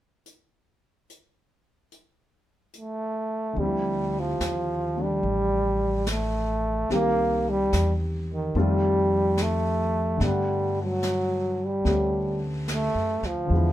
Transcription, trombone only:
2.77 3.61 A3 medium
3.60 4.21 G3 medium
4.19 5.05 F3 medium
5.03 6.12 G3 medium
6.11 6.92 A3 medium
6.93 7.51 A#3 medium
7.50 7.94 G3 medium
8.33 8.55 D#3 medium
8.60 9.44 G3 medium
9.42 10.26 A3 medium
10.25 10.79 G3 medium
10.82 11.67 F#3 medium
11.65 12.45 G3 medium
12.71 13.27 A3 medium
13.26 13.72 F3 medium

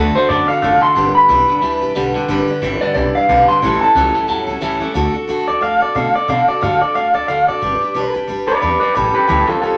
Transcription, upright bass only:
0.00 0.14 D2 medium
0.29 0.47 F#2 medium
0.49 muted upright bass stroke medium
0.62 0.80 F#1 loud
0.81 muted upright bass stroke medium
0.96 1.13 G1 medium
1.29 1.46 B1 medium
1.62 1.80 D2 medium
1.81 1.94 B1 medium
1.95 2.13 B1 loud
2.15 2.27 E1 medium
2.29 2.46 G1 medium
2.48 muted upright bass stroke medium
2.62 2.79 G1 medium
2.82 muted upright bass stroke medium
2.96 3.13 B1 loud
3.29 3.46 B1 loud
3.62 3.80 A1 medium
3.82 muted upright bass stroke medium
3.95 4.12 C#2 loud
4.29 4.46 E2 loud
4.48 4.60 C#2 medium
4.62 4.79 C#2 medium
4.80 4.93 G1 medium
4.95 5.08 D2 medium
5.14 muted upright bass stroke medium
5.29 5.42 F#2 medium
5.48 5.57 D2 medium
5.62 5.75 D2 medium
5.81 5.91 A2 medium
5.95 6.08 B2 medium
6.15 muted upright bass stroke medium
6.28 6.42 B2 medium
6.49 muted upright bass stroke medium
6.63 6.75 G2 medium
6.81 muted upright bass stroke medium
6.95 7.08 F#2 medium
7.14 7.24 D2 medium
7.28 7.41 D2 medium
7.48 7.57 F#2 medium
7.62 7.75 G1 medium
7.82 muted upright bass stroke medium
7.95 8.08 B1 medium
8.15 8.24 G1 medium
8.29 8.42 G1 medium
8.48 8.58 D2 medium
8.63 8.76 E2 medium
8.96 9.09 A1 medium
9.30 9.43 D2 medium
9.49 muted upright bass stroke medium
9.63 9.76 C#2 medium

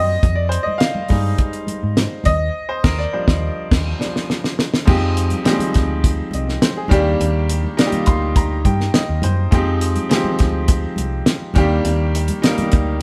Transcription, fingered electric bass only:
0.00 0.16 F#2 medium
0.23 0.56 F2 loud
0.66 muted fingered electric bass stroke soft
1.11 1.33 G2 medium
1.68 muted fingered electric bass stroke soft
1.83 2.05 G#2 medium
2.26 2.48 D#2 medium
2.84 3.04 D#2 loud
3.28 3.48 D#2 loud
3.72 3.92 D#2 loud
4.88 5.32 F2 loud
5.76 6.19 D2 medium
6.34 6.56 C2 medium
6.92 7.13 D#2 loud
7.21 7.64 D#2 loud
8.08 8.65 D2 medium
8.65 8.87 G2 medium
9.09 9.20 D#2 medium
9.24 9.46 F#2 medium
9.53 9.96 F2 loud
10.40 10.84 D2 medium
10.99 11.20 C2 medium
11.56 11.78 D#2 loud
11.85 12.29 D#2 medium
12.73 13.02 D2 medium

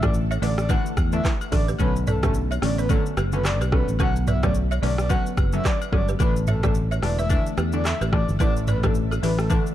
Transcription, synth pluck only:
0.03 0.22 D3 medium
0.03 0.22 E3 medium
0.03 0.22 A3 medium
0.03 0.23 D4 medium
0.42 0.64 D3 medium
0.42 0.64 E3 medium
0.42 0.64 A3 medium
0.42 0.64 D4 medium
0.69 0.91 D3 medium
0.69 0.91 E3 medium
0.69 0.91 A3 medium
0.69 0.91 D4 loud
1.13 1.32 D3 medium
1.13 1.32 E3 medium
1.13 1.33 A3 medium
1.13 1.33 D4 medium
1.52 1.74 D3 medium
1.52 1.74 E3 medium
1.52 1.74 A3 medium
1.52 1.74 D4 medium
1.79 2.19 D3 medium
1.79 2.19 F#3 medium
1.79 2.19 A3 medium
1.79 2.19 C#4 loud
2.23 2.42 D3 medium
2.23 2.43 F#3 medium
2.23 2.43 A3 medium
2.23 2.43 C#4 medium
2.62 2.84 D3 medium
2.62 2.84 F#3 medium
2.62 2.84 A3 medium
2.62 2.84 C#4 medium
2.89 3.11 D3 loud
2.89 3.11 F#3 medium
2.89 3.11 A3 medium
2.89 3.12 C#4 loud
3.33 3.53 D3 medium
3.33 3.53 F#3 medium
3.33 3.53 A3 medium
3.33 3.53 C#4 medium
3.72 3.94 D3 medium
3.72 3.94 F#3 medium
3.72 3.94 A3 medium
3.72 3.94 C#4 medium
3.99 4.39 D3 loud
3.99 4.39 F#3 medium
3.99 4.39 A3 medium
3.99 4.40 C#4 loud
4.43 4.63 D3 medium
4.43 4.63 F#3 medium
4.43 4.63 A3 medium
4.43 4.63 C#4 medium
4.82 5.04 D3 medium
4.82 5.04 F#3 medium
4.82 5.04 A3 medium
4.82 5.04 C#4 medium
5.10 5.31 D3 medium
5.10 5.32 F#3 medium
5.10 5.32 A3 medium
5.10 5.32 C#4 loud
5.53 5.73 D3 medium
5.53 5.73 F#3 medium
5.53 5.73 A3 medium
5.53 5.73 C#4 medium
5.92 6.14 D3 medium
5.92 6.14 F#3 medium
5.92 6.14 A3 medium
5.92 6.14 C#4 medium
6.20 6.59 D3 loud
6.20 6.60 E3 medium
6.20 6.60 A3 medium
6.20 6.60 D4 loud
6.63 6.83 D3 medium
6.63 6.83 E3 medium
6.63 6.83 A3 medium
6.63 6.83 D4 medium
7.02 7.24 D3 medium
7.02 7.24 E3 medium
7.02 7.24 A3 medium
7.02 7.24 D4 medium
7.30 7.52 D3 loud
7.30 7.52 E3 medium
7.30 7.52 A3 medium
7.30 7.52 D4 loud
7.73 7.93 D3 medium
7.73 7.93 E3 medium
7.73 7.93 A3 medium
7.73 7.93 D4 medium
8.12 8.34 D3 medium
8.12 8.34 E3 medium
8.12 8.34 A3 medium
8.12 8.34 D4 medium
8.40 8.80 D3 loud
8.40 8.80 E3 medium
8.40 8.80 A3 medium
8.40 8.80 D4 loud
8.83 9.03 D3 medium
8.83 9.03 E3 medium
8.83 9.03 A3 medium
8.83 9.03 D4 medium
9.22 9.44 D3 medium
9.22 9.44 E3 medium
9.22 9.45 A3 medium
9.22 9.45 D4 medium
9.50 9.72 D3 medium
9.50 9.72 E3 medium
9.50 9.72 A3 medium
9.50 9.72 D4 loud

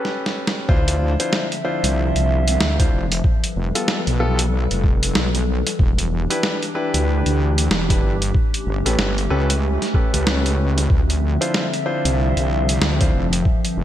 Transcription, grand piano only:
0.00 0.67 C#4 medium
0.00 0.67 G4 medium
0.00 0.67 A4 medium
0.00 0.67 B4 medium
0.69 1.12 D4 loud
0.69 1.12 E4 medium
0.69 1.12 F4 medium
0.69 1.12 C5 loud
1.20 1.44 D4 medium
1.20 1.44 E4 medium
1.20 1.44 F4 medium
1.20 1.44 C5 medium
1.65 2.75 D4 medium
1.65 2.75 E4 medium
1.65 2.75 F4 medium
1.65 2.75 C5 loud
2.79 3.04 D4 medium
2.79 3.04 E4 medium
2.79 3.04 F4 medium
2.79 3.04 C5 medium
3.75 3.99 B3 medium
3.75 3.99 F4 medium
3.75 3.99 G4 medium
3.75 3.99 A4 medium
4.20 4.39 B3 loud
4.20 4.39 F4 medium
4.20 4.39 G4 medium
4.20 4.39 A4 loud
6.30 6.55 D4 medium
6.30 6.55 E4 medium
6.30 6.54 G4 medium
6.30 6.54 B4 medium
6.75 7.85 D4 medium
6.75 7.85 E4 medium
6.75 7.85 G4 medium
6.75 7.85 B4 loud
7.90 8.14 D4 medium
7.90 8.14 E4 medium
7.90 8.14 G4 medium
7.90 8.14 B4 medium
8.86 9.10 C#4 medium
8.86 9.10 G4 medium
8.86 9.10 A4 medium
8.86 9.10 B4 medium
9.30 9.50 C#4 loud
9.30 9.49 G4 medium
9.30 9.50 A4 medium
9.30 9.49 B4 loud
9.94 10.11 C#4 medium
9.94 10.11 G4 medium
9.94 10.11 A4 medium
9.94 10.11 B4 medium
10.14 10.89 C#4 medium
10.14 10.89 G4 medium
10.14 10.89 A4 medium
10.14 10.89 B4 medium
11.41 11.65 D4 medium
11.41 11.65 E4 medium
11.41 11.65 F4 medium
11.41 11.65 C5 medium
11.86 12.96 D4 medium
11.86 12.96 E4 medium
11.86 12.96 F4 medium
11.86 12.96 C5 loud
13.01 13.25 D4 medium
13.01 13.25 E4 medium
13.01 13.25 F4 medium
13.01 13.25 C5 medium

